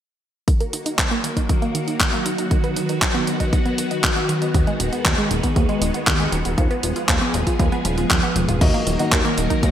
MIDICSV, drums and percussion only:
0, 0, Header, 1, 2, 480
1, 0, Start_track
1, 0, Key_signature, -6, "minor"
1, 0, Tempo, 508475
1, 450, Time_signature, 4, 2, 24, 8
1, 9166, End_track
2, 0, Start_track
2, 0, Title_t, "Drums"
2, 450, Note_on_c, 9, 36, 107
2, 451, Note_on_c, 9, 42, 50
2, 545, Note_off_c, 9, 36, 0
2, 545, Note_off_c, 9, 42, 0
2, 571, Note_on_c, 9, 42, 24
2, 665, Note_off_c, 9, 42, 0
2, 691, Note_on_c, 9, 42, 86
2, 785, Note_off_c, 9, 42, 0
2, 811, Note_on_c, 9, 42, 50
2, 905, Note_off_c, 9, 42, 0
2, 930, Note_on_c, 9, 36, 103
2, 931, Note_on_c, 9, 39, 106
2, 931, Note_on_c, 9, 42, 47
2, 1025, Note_off_c, 9, 36, 0
2, 1025, Note_off_c, 9, 39, 0
2, 1025, Note_off_c, 9, 42, 0
2, 1051, Note_on_c, 9, 42, 25
2, 1145, Note_off_c, 9, 42, 0
2, 1171, Note_on_c, 9, 42, 83
2, 1265, Note_off_c, 9, 42, 0
2, 1290, Note_on_c, 9, 36, 54
2, 1291, Note_on_c, 9, 42, 51
2, 1385, Note_off_c, 9, 36, 0
2, 1385, Note_off_c, 9, 42, 0
2, 1410, Note_on_c, 9, 36, 103
2, 1411, Note_on_c, 9, 42, 49
2, 1505, Note_off_c, 9, 36, 0
2, 1505, Note_off_c, 9, 42, 0
2, 1531, Note_on_c, 9, 42, 25
2, 1625, Note_off_c, 9, 42, 0
2, 1651, Note_on_c, 9, 42, 82
2, 1745, Note_off_c, 9, 42, 0
2, 1771, Note_on_c, 9, 42, 48
2, 1866, Note_off_c, 9, 42, 0
2, 1890, Note_on_c, 9, 36, 108
2, 1891, Note_on_c, 9, 39, 108
2, 1891, Note_on_c, 9, 42, 49
2, 1985, Note_off_c, 9, 36, 0
2, 1985, Note_off_c, 9, 39, 0
2, 1985, Note_off_c, 9, 42, 0
2, 2011, Note_on_c, 9, 42, 23
2, 2105, Note_off_c, 9, 42, 0
2, 2131, Note_on_c, 9, 42, 88
2, 2225, Note_off_c, 9, 42, 0
2, 2250, Note_on_c, 9, 42, 47
2, 2345, Note_off_c, 9, 42, 0
2, 2370, Note_on_c, 9, 36, 110
2, 2370, Note_on_c, 9, 42, 48
2, 2464, Note_off_c, 9, 36, 0
2, 2465, Note_off_c, 9, 42, 0
2, 2490, Note_on_c, 9, 42, 24
2, 2584, Note_off_c, 9, 42, 0
2, 2610, Note_on_c, 9, 42, 79
2, 2704, Note_off_c, 9, 42, 0
2, 2730, Note_on_c, 9, 42, 50
2, 2824, Note_off_c, 9, 42, 0
2, 2850, Note_on_c, 9, 36, 112
2, 2850, Note_on_c, 9, 39, 110
2, 2850, Note_on_c, 9, 42, 49
2, 2944, Note_off_c, 9, 39, 0
2, 2944, Note_off_c, 9, 42, 0
2, 2945, Note_off_c, 9, 36, 0
2, 2970, Note_on_c, 9, 42, 25
2, 3065, Note_off_c, 9, 42, 0
2, 3091, Note_on_c, 9, 42, 83
2, 3185, Note_off_c, 9, 42, 0
2, 3210, Note_on_c, 9, 36, 58
2, 3211, Note_on_c, 9, 42, 50
2, 3305, Note_off_c, 9, 36, 0
2, 3305, Note_off_c, 9, 42, 0
2, 3330, Note_on_c, 9, 36, 112
2, 3331, Note_on_c, 9, 42, 47
2, 3425, Note_off_c, 9, 36, 0
2, 3425, Note_off_c, 9, 42, 0
2, 3451, Note_on_c, 9, 42, 24
2, 3545, Note_off_c, 9, 42, 0
2, 3570, Note_on_c, 9, 42, 82
2, 3665, Note_off_c, 9, 42, 0
2, 3691, Note_on_c, 9, 42, 49
2, 3785, Note_off_c, 9, 42, 0
2, 3811, Note_on_c, 9, 36, 109
2, 3811, Note_on_c, 9, 39, 111
2, 3811, Note_on_c, 9, 42, 48
2, 3905, Note_off_c, 9, 36, 0
2, 3905, Note_off_c, 9, 39, 0
2, 3905, Note_off_c, 9, 42, 0
2, 3931, Note_on_c, 9, 42, 23
2, 4025, Note_off_c, 9, 42, 0
2, 4051, Note_on_c, 9, 42, 85
2, 4145, Note_off_c, 9, 42, 0
2, 4170, Note_on_c, 9, 42, 47
2, 4265, Note_off_c, 9, 42, 0
2, 4290, Note_on_c, 9, 42, 48
2, 4291, Note_on_c, 9, 36, 116
2, 4385, Note_off_c, 9, 36, 0
2, 4385, Note_off_c, 9, 42, 0
2, 4411, Note_on_c, 9, 42, 23
2, 4505, Note_off_c, 9, 42, 0
2, 4531, Note_on_c, 9, 42, 81
2, 4625, Note_off_c, 9, 42, 0
2, 4650, Note_on_c, 9, 42, 47
2, 4745, Note_off_c, 9, 42, 0
2, 4771, Note_on_c, 9, 36, 116
2, 4771, Note_on_c, 9, 39, 110
2, 4771, Note_on_c, 9, 42, 47
2, 4865, Note_off_c, 9, 36, 0
2, 4865, Note_off_c, 9, 39, 0
2, 4865, Note_off_c, 9, 42, 0
2, 4890, Note_on_c, 9, 42, 23
2, 4985, Note_off_c, 9, 42, 0
2, 5010, Note_on_c, 9, 42, 82
2, 5105, Note_off_c, 9, 42, 0
2, 5130, Note_on_c, 9, 36, 59
2, 5130, Note_on_c, 9, 42, 50
2, 5225, Note_off_c, 9, 36, 0
2, 5225, Note_off_c, 9, 42, 0
2, 5250, Note_on_c, 9, 36, 108
2, 5250, Note_on_c, 9, 42, 45
2, 5345, Note_off_c, 9, 36, 0
2, 5345, Note_off_c, 9, 42, 0
2, 5371, Note_on_c, 9, 42, 22
2, 5465, Note_off_c, 9, 42, 0
2, 5490, Note_on_c, 9, 42, 79
2, 5585, Note_off_c, 9, 42, 0
2, 5611, Note_on_c, 9, 42, 47
2, 5705, Note_off_c, 9, 42, 0
2, 5730, Note_on_c, 9, 36, 114
2, 5730, Note_on_c, 9, 39, 110
2, 5730, Note_on_c, 9, 42, 47
2, 5824, Note_off_c, 9, 36, 0
2, 5825, Note_off_c, 9, 39, 0
2, 5825, Note_off_c, 9, 42, 0
2, 5850, Note_on_c, 9, 42, 23
2, 5945, Note_off_c, 9, 42, 0
2, 5970, Note_on_c, 9, 42, 82
2, 6065, Note_off_c, 9, 42, 0
2, 6090, Note_on_c, 9, 42, 47
2, 6184, Note_off_c, 9, 42, 0
2, 6210, Note_on_c, 9, 36, 111
2, 6210, Note_on_c, 9, 42, 48
2, 6304, Note_off_c, 9, 36, 0
2, 6305, Note_off_c, 9, 42, 0
2, 6331, Note_on_c, 9, 42, 24
2, 6425, Note_off_c, 9, 42, 0
2, 6450, Note_on_c, 9, 42, 79
2, 6544, Note_off_c, 9, 42, 0
2, 6570, Note_on_c, 9, 42, 47
2, 6664, Note_off_c, 9, 42, 0
2, 6690, Note_on_c, 9, 36, 114
2, 6690, Note_on_c, 9, 39, 111
2, 6690, Note_on_c, 9, 42, 46
2, 6784, Note_off_c, 9, 36, 0
2, 6784, Note_off_c, 9, 39, 0
2, 6784, Note_off_c, 9, 42, 0
2, 6809, Note_on_c, 9, 42, 23
2, 6904, Note_off_c, 9, 42, 0
2, 6930, Note_on_c, 9, 42, 81
2, 7024, Note_off_c, 9, 42, 0
2, 7050, Note_on_c, 9, 36, 59
2, 7050, Note_on_c, 9, 42, 48
2, 7144, Note_off_c, 9, 36, 0
2, 7144, Note_off_c, 9, 42, 0
2, 7170, Note_on_c, 9, 36, 107
2, 7170, Note_on_c, 9, 42, 46
2, 7264, Note_off_c, 9, 36, 0
2, 7264, Note_off_c, 9, 42, 0
2, 7290, Note_on_c, 9, 42, 22
2, 7384, Note_off_c, 9, 42, 0
2, 7410, Note_on_c, 9, 42, 79
2, 7504, Note_off_c, 9, 42, 0
2, 7530, Note_on_c, 9, 42, 45
2, 7624, Note_off_c, 9, 42, 0
2, 7650, Note_on_c, 9, 36, 113
2, 7650, Note_on_c, 9, 39, 113
2, 7650, Note_on_c, 9, 42, 46
2, 7744, Note_off_c, 9, 36, 0
2, 7745, Note_off_c, 9, 39, 0
2, 7745, Note_off_c, 9, 42, 0
2, 7770, Note_on_c, 9, 42, 23
2, 7865, Note_off_c, 9, 42, 0
2, 7890, Note_on_c, 9, 42, 81
2, 7890, Note_on_c, 9, 48, 56
2, 7984, Note_off_c, 9, 42, 0
2, 7984, Note_off_c, 9, 48, 0
2, 8010, Note_on_c, 9, 42, 46
2, 8010, Note_on_c, 9, 47, 67
2, 8104, Note_off_c, 9, 42, 0
2, 8104, Note_off_c, 9, 47, 0
2, 8130, Note_on_c, 9, 36, 113
2, 8130, Note_on_c, 9, 42, 54
2, 8130, Note_on_c, 9, 49, 90
2, 8225, Note_off_c, 9, 36, 0
2, 8225, Note_off_c, 9, 42, 0
2, 8225, Note_off_c, 9, 49, 0
2, 8250, Note_on_c, 9, 42, 26
2, 8344, Note_off_c, 9, 42, 0
2, 8371, Note_on_c, 9, 42, 89
2, 8465, Note_off_c, 9, 42, 0
2, 8491, Note_on_c, 9, 42, 55
2, 8585, Note_off_c, 9, 42, 0
2, 8610, Note_on_c, 9, 36, 111
2, 8611, Note_on_c, 9, 39, 106
2, 8611, Note_on_c, 9, 42, 52
2, 8705, Note_off_c, 9, 36, 0
2, 8705, Note_off_c, 9, 39, 0
2, 8705, Note_off_c, 9, 42, 0
2, 8731, Note_on_c, 9, 42, 26
2, 8826, Note_off_c, 9, 42, 0
2, 8851, Note_on_c, 9, 42, 88
2, 8945, Note_off_c, 9, 42, 0
2, 8970, Note_on_c, 9, 36, 56
2, 8971, Note_on_c, 9, 42, 53
2, 9065, Note_off_c, 9, 36, 0
2, 9066, Note_off_c, 9, 42, 0
2, 9090, Note_on_c, 9, 36, 110
2, 9091, Note_on_c, 9, 42, 52
2, 9166, Note_off_c, 9, 36, 0
2, 9166, Note_off_c, 9, 42, 0
2, 9166, End_track
0, 0, End_of_file